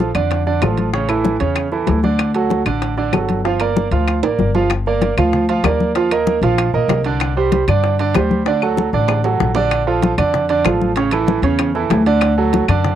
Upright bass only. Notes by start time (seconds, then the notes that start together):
0.15 F2
0.62 A1
1.40 E2
1.88 D2
2.65 A1
3.13 G1
3.91 D2
4.24 A1
4.39 G1
5.17 D2
5.63 D#2
6.41 A#1
6.74 A#1
6.88 C2
7.68 G2
8.15 D2
8.93 A1
9.40 A#1
10.18 F2
10.65 A1
11.42 E2
11.90 D2
12.68 F#2